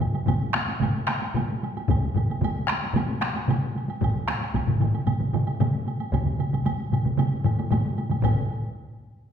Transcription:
0.00 taiko low-mid medium
0.00 taiko mid medium
0.00 taiko high soft
0.00 high woodblock soft
0.15 taiko high medium
0.15 high woodblock soft
0.26 taiko medium
0.26 taiko low-mid loud
0.26 taiko mid medium
0.26 taiko high medium
0.26 high woodblock medium
0.53 taiko rim medium
0.53 taiko high medium
0.53 high woodblock soft
0.68 taiko high medium
0.68 high woodblock soft
0.80 taiko low-mid medium
0.80 taiko mid medium
0.80 taiko high medium
0.80 high woodblock medium
1.07 taiko rim medium
1.07 taiko high medium
1.07 high woodblock soft
1.22 taiko high medium
1.22 high woodblock soft
1.34 taiko low-mid medium
1.34 taiko mid loud
1.34 taiko high medium
1.34 high woodblock soft
1.64 taiko high medium
1.64 high woodblock soft
1.77 taiko high medium
1.77 high woodblock soft
1.88 taiko loud
1.88 taiko low-mid loud
1.88 taiko mid loud
1.88 taiko high medium
1.88 high woodblock medium
2.14 taiko low-mid medium
2.14 taiko mid medium
2.14 taiko high medium
2.14 high woodblock soft
2.30 taiko high soft
2.30 high woodblock soft
2.41 taiko medium
2.41 taiko low-mid loud
2.41 taiko mid medium
2.41 taiko high medium
2.41 high woodblock medium
2.68 taiko rim medium
2.69 taiko rim medium
2.69 taiko high medium
2.69 high woodblock soft
2.83 taiko high soft
2.83 high woodblock soft
2.94 taiko low-mid loud
2.94 taiko mid medium
2.94 taiko high medium
2.94 high woodblock medium
3.21 taiko rim medium
3.21 taiko high soft
3.21 high woodblock soft
3.36 taiko high medium
3.36 high woodblock soft
3.48 taiko low-mid medium
3.48 taiko mid loud
3.48 taiko high medium
3.48 high woodblock soft
3.76 taiko high soft
3.76 high woodblock soft
3.88 taiko high soft
3.88 high woodblock soft
4.01 taiko medium
4.01 taiko low-mid loud
4.01 taiko mid medium
4.01 taiko high medium
4.01 high woodblock medium
4.28 taiko rim medium
4.28 taiko high soft
4.28 high woodblock soft
4.41 taiko high soft
4.41 high woodblock soft
4.54 taiko medium
4.54 taiko low-mid medium
4.54 taiko mid medium
4.54 taiko high medium
4.54 high woodblock soft
4.67 taiko low-mid medium
4.67 taiko mid medium
4.81 taiko low-mid loud
4.81 taiko mid medium
4.81 taiko high medium
4.81 high woodblock soft
4.95 taiko high soft
4.95 high woodblock soft
5.06 taiko low-mid medium
5.06 taiko mid medium
5.06 taiko high medium
5.06 high woodblock medium
5.20 taiko low-mid medium
5.20 taiko mid medium
5.34 taiko low-mid medium
5.34 taiko mid loud
5.34 taiko high soft
5.34 high woodblock soft
5.47 taiko high soft
5.47 high woodblock soft
5.60 taiko low-mid loud
5.60 taiko mid loud
5.60 taiko high medium
5.60 high woodblock soft
5.88 taiko high soft
5.88 high woodblock soft
6.00 taiko high soft
6.00 high woodblock soft
6.13 taiko loud
6.13 taiko low-mid medium
6.13 taiko mid medium
6.13 taiko high medium
6.13 high woodblock soft
6.26 taiko low-mid medium
6.26 taiko mid medium
6.39 taiko low-mid medium
6.39 taiko mid medium
6.39 taiko high soft
6.39 high woodblock soft
6.53 taiko low-mid medium
6.53 taiko mid medium
6.53 taiko high soft
6.53 high woodblock soft
6.66 taiko low-mid medium
6.66 taiko mid medium
6.66 taiko high medium
6.66 high woodblock medium
6.92 taiko low-mid medium
6.92 taiko mid medium
6.92 taiko high medium
6.92 high woodblock soft
7.05 taiko low-mid medium
7.05 taiko mid medium
7.05 taiko high soft
7.17 taiko low-mid medium
7.17 taiko mid loud
7.17 taiko high medium
7.17 high woodblock medium
7.44 taiko low-mid loud
7.44 taiko mid loud
7.44 taiko high medium
7.44 high woodblock soft
7.59 taiko high medium
7.59 high woodblock soft
7.71 taiko low-mid medium
7.71 taiko mid loud
7.71 taiko high medium
7.71 high woodblock soft
7.98 taiko high medium
7.98 high woodblock soft
8.10 taiko low-mid medium
8.10 taiko mid medium
8.10 taiko high medium
8.10 high woodblock soft
8.22 taiko medium
8.22 taiko low-mid loud
8.22 taiko mid loud
8.22 taiko high medium
8.22 high woodblock medium

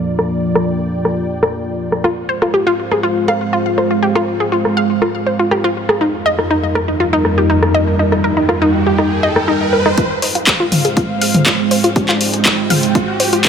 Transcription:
0.00 2.00 F3 medium
0.00 2.00 A#3 medium
0.00 2.00 F4 medium
0.00 2.00 D5 medium
0.06 2.02 G5 medium
0.19 cross-stick soft
0.55 cross-stick medium
1.05 cross-stick soft
1.43 cross-stick medium
1.92 cross-stick soft
2.04 5.97 G#3 medium
2.04 2.14 F4 medium
2.04 5.97 F4 medium
2.04 5.97 C5 medium
2.04 7.95 F5 medium
2.04 cross-stick soft
2.29 2.35 C5 medium
2.42 2.48 F4 medium
2.42 cross-stick medium
2.54 2.60 G4 medium
2.67 2.73 F4 loud
2.91 3.01 G#4 medium
2.91 cross-stick soft
3.03 3.10 F4 medium
3.28 3.35 F5 loud
3.28 cross-stick medium
3.53 3.63 F4 medium
3.78 3.84 C5 medium
3.78 cross-stick soft
3.91 3.97 F4 medium
4.03 4.09 G4 medium
4.15 4.21 F4 loud
4.15 cross-stick medium
4.40 4.49 G#4 medium
4.52 4.59 F4 medium
4.65 cross-stick soft
4.77 4.83 F5 loud
5.02 5.12 F4 medium
5.02 cross-stick medium
5.27 5.33 C5 medium
5.39 5.45 F4 medium
5.51 5.58 G4 medium
5.51 cross-stick medium
5.64 5.70 F4 loud
5.89 5.98 G#4 medium
5.89 cross-stick medium
6.01 9.94 F2 medium
6.01 9.94 G3 medium
6.01 9.94 D#4 medium
6.01 6.07 D#4 medium
6.01 9.94 A#4 medium
6.01 riser medium
6.26 6.32 D#5 loud
6.39 cross-stick soft
6.50 6.60 D#4 medium
6.75 6.82 A#4 medium
6.75 cross-stick medium
6.88 6.94 D#4 medium
7.00 7.07 F4 medium
7.13 7.19 D#4 loud
7.25 cross-stick soft
7.38 7.47 G4 medium
7.50 7.56 D#4 medium
7.63 cross-stick medium
7.74 7.81 D#5 loud
7.99 8.09 D#4 medium
7.99 9.96 G5 medium
8.12 cross-stick soft
8.24 8.31 A#4 medium
8.37 8.43 D#4 medium
8.49 8.55 F4 medium
8.49 cross-stick medium
8.62 8.68 D#4 loud
8.87 8.96 G4 medium
8.98 9.05 D#4 medium
8.98 cross-stick soft
9.23 9.30 D#5 loud
9.36 cross-stick medium
9.48 9.58 D#4 medium
9.73 9.79 A#4 medium
9.86 9.92 D#4 medium
9.86 cross-stick soft
9.98 13.49 G#3 medium
9.98 10.07 F4 medium
9.98 13.49 F4 medium
9.98 13.49 C5 medium
9.98 11.94 F5 medium
9.98 kick loud
9.98 closed hi-hat medium
9.98 riser medium
10.22 10.29 C5 medium
10.22 open hi-hat loud
10.35 10.41 F4 medium
10.35 closed hi-hat medium
10.47 10.54 G4 medium
10.47 kick loud
10.47 clap loud
10.47 closed hi-hat medium
10.60 10.66 F4 loud
10.72 open hi-hat loud
10.72 mid tom medium
10.85 10.94 G#4 medium
10.85 closed hi-hat medium
10.97 11.03 F4 medium
10.97 kick loud
10.97 closed hi-hat medium
11.22 11.28 F5 loud
11.22 open hi-hat loud
11.34 closed hi-hat medium
11.34 mid tom medium
11.46 11.56 F4 medium
11.46 kick loud
11.46 clap loud
11.46 closed hi-hat medium
11.71 11.78 C5 medium
11.71 open hi-hat loud
11.84 11.90 F4 medium
11.84 closed hi-hat medium
11.96 12.02 G4 medium
11.96 13.49 G5 medium
11.96 kick loud
11.96 closed hi-hat medium
12.09 12.15 F4 loud
12.09 clap soft
12.21 open hi-hat loud
12.34 12.43 G#4 medium
12.34 closed hi-hat medium
12.45 12.52 F4 medium
12.45 kick loud
12.45 clap loud
12.45 closed hi-hat medium
12.70 12.77 F5 loud
12.70 open hi-hat loud
12.70 mid tom medium
12.83 closed hi-hat medium
12.95 13.05 F4 medium
12.95 kick loud
12.95 closed hi-hat medium
13.20 13.26 C5 medium
13.20 open hi-hat loud
13.33 13.39 F4 medium
13.33 closed hi-hat medium
13.45 13.49 G4 medium
13.45 kick loud
13.45 clap loud
13.45 closed hi-hat medium

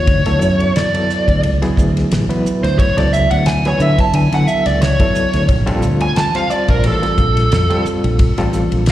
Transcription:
0.00 0.72 C#5 medium
0.07 0.23 D2 loud
0.07 kick loud
0.07 ride medium
0.26 0.40 D2 medium
0.26 0.89 F#3 medium
0.26 0.88 B3 medium
0.26 0.88 E4 medium
0.26 0.88 A4 medium
0.26 snare soft
0.26 ride medium
0.41 0.71 F#2 medium
0.41 hi-hat pedal medium
0.60 ride medium
0.76 1.40 D5 medium
0.76 snare loud
0.76 ride medium
0.94 1.56 F#3 medium
0.94 1.56 B3 medium
0.94 1.56 E4 medium
0.94 1.56 A4 medium
0.94 ride medium
1.10 snare soft
1.10 hi-hat pedal medium
1.28 1.41 D2 medium
1.28 kick medium
1.28 ride medium
1.43 1.59 C#2 medium
1.43 ride medium
1.62 2.24 F#3 medium
1.62 2.24 B3 medium
1.62 2.24 E4 medium
1.62 2.24 G#4 loud
1.62 muted fingered electric bass stroke soft
1.62 snare soft
1.62 ride medium
1.77 2.06 D2 medium
1.77 kick medium
1.77 hi-hat pedal medium
1.97 snare soft
1.97 ride medium
2.11 2.27 A1 medium
2.11 snare loud
2.11 ride medium
2.29 2.91 F#3 medium
2.29 2.91 B3 medium
2.29 2.91 E4 medium
2.29 2.91 B4 medium
2.29 ride medium
2.45 muted fingered electric bass stroke soft
2.45 hi-hat pedal medium
2.63 2.76 D2 medium
2.63 2.78 C5 medium
2.63 snare soft
2.63 ride medium
2.79 2.97 C#5 medium
2.79 kick loud
2.79 ride medium
2.97 3.26 C#2 medium
2.97 3.59 F#3 medium
2.97 3.59 B3 medium
2.97 3.59 E4 medium
2.97 3.59 A4 medium
2.97 3.13 D5 medium
2.97 snare soft
2.97 ride medium
3.13 3.31 E5 medium
3.13 snare soft
3.13 hi-hat pedal medium
3.31 3.72 D2 medium
3.31 3.46 F#5 medium
3.31 ride medium
3.46 3.64 G#5 medium
3.46 snare loud
3.46 ride medium
3.65 4.27 F#3 medium
3.65 4.27 B3 medium
3.65 4.27 E4 medium
3.65 4.27 B4 medium
3.65 3.81 C#5 medium
3.65 snare soft
3.65 ride medium
3.80 3.95 D3 medium
3.80 3.99 E5 medium
3.80 hi-hat pedal medium
3.98 4.14 A5 medium
3.98 kick medium
3.98 ride medium
4.13 4.29 D3 medium
4.13 4.33 G#5 medium
4.13 ride medium
4.32 4.45 D3 medium
4.32 4.94 F#3 medium
4.32 4.94 B3 medium
4.32 4.94 E4 medium
4.32 4.94 A4 medium
4.32 4.47 F#5 medium
4.32 snare soft
4.32 ride medium
4.47 4.65 E5 medium
4.47 hi-hat pedal medium
4.66 4.95 C#2 medium
4.66 4.81 D5 medium
4.66 snare soft
4.66 ride medium
4.82 5.46 C#5 medium
4.82 snare loud
4.82 ride medium
4.99 5.49 F#3 medium
4.99 5.49 B3 medium
4.99 5.49 E4 medium
4.99 5.49 A4 medium
4.99 kick medium
4.99 ride medium
5.15 hi-hat pedal medium
5.33 5.47 D2 medium
5.33 snare soft
5.33 ride medium
5.49 5.65 A#1 medium
5.49 kick loud
5.49 ride medium
5.66 5.81 A#1 medium
5.66 6.29 G3 loud
5.66 6.29 C4 medium
5.66 6.29 F4 loud
5.66 6.29 A4 loud
5.66 ride medium
5.82 6.11 D2 medium
5.82 hi-hat pedal medium
6.00 6.16 G#5 medium
6.00 ride medium
6.16 6.35 A5 medium
6.16 snare loud
6.16 ride medium
6.35 6.97 G3 medium
6.35 6.97 C4 medium
6.35 6.97 F4 medium
6.35 6.97 C5 medium
6.35 6.50 F5 medium
6.35 snare soft
6.35 ride medium
6.50 6.69 D5 medium
6.50 snare soft
6.50 hi-hat pedal medium
6.68 6.82 A#1 medium
6.68 6.84 A#4 medium
6.68 kick medium
6.68 ride medium
6.84 7.00 A1 medium
6.84 7.83 A4 medium
6.84 ride medium
7.02 7.64 G3 medium
7.02 7.65 C4 medium
7.02 7.65 F4 medium
7.02 7.65 A4 medium
7.02 muted fingered electric bass stroke soft
7.02 snare soft
7.02 ride medium
7.18 7.47 A#1 medium
7.18 kick medium
7.18 hi-hat pedal medium
7.37 snare soft
7.37 ride medium
7.52 7.68 F2 medium
7.52 snare loud
7.52 ride medium
7.70 8.32 G3 medium
7.70 8.32 C4 medium
7.70 8.32 F4 medium
7.70 8.32 A4 medium
7.70 ride medium
7.85 muted fingered electric bass stroke soft
7.85 hi-hat pedal medium
8.04 8.17 A#1 medium
8.04 ride medium
8.19 kick loud
8.19 ride medium
8.38 8.67 A1 medium
8.38 8.92 G3 medium
8.38 8.92 C4 medium
8.38 8.92 F4 medium
8.38 8.92 A4 loud
8.38 snare soft
8.38 ride medium
8.53 snare soft
8.53 hi-hat pedal medium
8.72 8.92 A#1 medium
8.72 ride medium
8.86 snare loud
8.86 ride medium

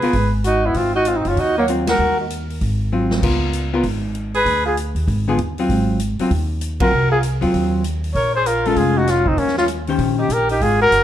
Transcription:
0.00 0.14 B3 medium
0.00 0.14 F4 medium
0.00 0.34 G#4 medium
0.00 0.14 A#4 medium
0.00 0.35 B4 medium
0.00 muted upright bass stroke soft
0.00 open hi-hat soft
0.13 0.73 G#1 medium
0.13 kick soft
0.13 open hi-hat soft
0.44 0.68 D#4 medium
0.44 0.67 F#4 medium
0.44 closed hi-hat medium
0.66 0.78 B3 medium
0.66 0.78 E4 medium
0.74 1.22 G#1 medium
0.74 0.95 C4 medium
0.74 0.95 F4 medium
0.74 kick soft
0.74 open hi-hat soft
0.95 1.09 D#4 medium
0.95 1.09 F#4 loud
1.05 1.18 C4 medium
1.05 1.18 F4 medium
1.05 closed hi-hat soft
1.16 1.30 C4 medium
1.16 1.29 D#4 medium
1.25 1.36 F#1 medium
1.25 1.41 F4 medium
1.25 open hi-hat soft
1.29 1.41 C#4 medium
1.36 1.96 D#2 medium
1.36 1.58 D#4 medium
1.36 1.57 F#4 medium
1.36 kick soft
1.36 open hi-hat soft
1.58 1.69 F#3 medium
1.58 1.65 A#3 medium
1.68 1.86 F#3 soft
1.68 1.86 C4 medium
1.68 1.86 F4 medium
1.68 closed hi-hat medium
1.87 2.17 F#4 medium
1.87 2.18 A#4 medium
1.87 snare medium
1.87 ride medium
1.99 2.58 D#2 medium
2.20 2.26 D#4 soft
2.20 2.25 F#4 soft
2.30 closed hi-hat soft
2.50 open hi-hat soft
2.61 3.20 G#1 medium
2.61 kick soft
2.61 open hi-hat soft
2.92 3.23 F#3 soft
2.92 3.23 C4 medium
2.92 3.22 F4 medium
3.11 snare medium
3.23 3.81 C#2 medium
3.23 3.69 B3 medium
3.23 3.70 F4 medium
3.23 3.70 A#4 medium
3.23 kick medium
3.23 crash medium
3.53 closed hi-hat soft
3.73 3.84 B3 medium
3.73 3.84 F4 medium
3.73 3.84 A#4 medium
3.83 4.42 G#1 medium
3.83 kick soft
3.83 open hi-hat soft
4.15 closed hi-hat soft
4.34 4.63 G#4 medium
4.34 4.64 B4 medium
4.34 open hi-hat soft
4.45 4.92 D2 medium
4.45 kick soft
4.45 open hi-hat soft
4.66 4.76 F4 medium
4.66 4.77 G#4 medium
4.77 closed hi-hat soft
4.95 5.06 D#2 medium
4.95 open hi-hat soft
5.08 5.36 G#1 medium
5.08 kick soft
5.08 open hi-hat soft
5.28 5.38 D3 medium
5.28 5.38 B3 medium
5.28 5.38 F4 medium
5.28 5.38 G#4 medium
5.37 5.67 D#2 medium
5.37 closed hi-hat medium
5.58 5.98 F#3 medium
5.58 5.99 C4 medium
5.58 5.99 F4 medium
5.58 open hi-hat soft
5.69 6.16 G#1 medium
5.69 kick soft
5.69 open hi-hat soft
5.99 closed hi-hat soft
6.19 6.30 F#3 medium
6.19 6.30 C4 medium
6.19 6.31 F4 medium
6.19 muted upright bass stroke soft
6.19 open hi-hat soft
6.30 6.89 D#2 medium
6.30 kick soft
6.30 open hi-hat soft
6.61 closed hi-hat medium
6.80 6.91 F#3 medium
6.80 6.91 C4 medium
6.80 6.92 F4 medium
6.80 7.09 F#4 medium
6.80 7.10 A#4 medium
6.80 kick medium
6.80 ride medium
6.92 7.39 C2 medium
7.11 7.22 F4 medium
7.11 7.19 G#4 medium
7.23 closed hi-hat soft
7.41 7.53 D#2 medium
7.41 7.82 F#3 medium
7.41 7.82 C4 medium
7.41 7.82 F4 medium
7.41 open hi-hat soft
7.53 8.12 D#2 medium
7.53 kick soft
7.53 open hi-hat soft
7.84 closed hi-hat soft
8.04 open hi-hat soft
8.15 8.73 A#1 medium
8.15 8.33 A#4 medium
8.15 8.33 C#5 medium
8.15 kick soft
8.15 open hi-hat soft
8.35 8.48 G#4 medium
8.35 8.48 C5 medium
8.46 8.68 F4 medium
8.46 8.68 A#4 medium
8.46 closed hi-hat soft
8.65 9.06 G#3 medium
8.65 9.06 C#4 medium
8.65 9.06 F4 medium
8.65 8.78 F4 medium
8.65 8.79 A4 medium
8.65 open hi-hat soft
8.76 9.35 F1 medium
8.76 8.99 F4 medium
8.76 8.99 G#4 medium
8.76 kick soft
8.76 open hi-hat soft
8.97 9.09 D#4 medium
8.97 9.12 F#4 medium
9.07 9.27 C#4 medium
9.07 9.29 F4 medium
9.07 snare soft
9.07 closed hi-hat soft
9.26 9.39 C4 medium
9.26 9.40 D#4 medium
9.26 kick soft
9.37 9.96 D#2 medium
9.37 9.57 A#3 medium
9.37 9.57 C#4 medium
9.37 kick soft
9.37 open hi-hat soft
9.48 snare soft
9.57 9.68 C#4 medium
9.57 9.65 F4 medium
9.57 snare soft
9.68 closed hi-hat soft
9.87 10.28 D#3 medium
9.87 10.28 C#4 medium
9.87 10.29 G4 medium
9.87 10.29 C5 medium
9.87 open hi-hat soft
9.99 10.28 A#1 medium
9.99 kick soft
9.99 open hi-hat soft
10.18 10.34 D#4 medium
10.18 10.34 G4 medium
10.29 10.58 A#1 medium
10.29 10.50 G4 medium
10.29 10.50 A#4 medium
10.29 closed hi-hat soft
10.49 10.64 D#4 medium
10.49 10.64 G4 medium
10.49 open hi-hat soft
10.61 10.89 G#1 medium
10.61 10.80 F4 medium
10.61 10.81 G#4 medium
10.61 kick soft
10.61 open hi-hat soft
10.81 11.04 F#4 medium
10.81 11.04 A#4 loud
10.91 11.04 F#1 medium
10.91 closed hi-hat soft

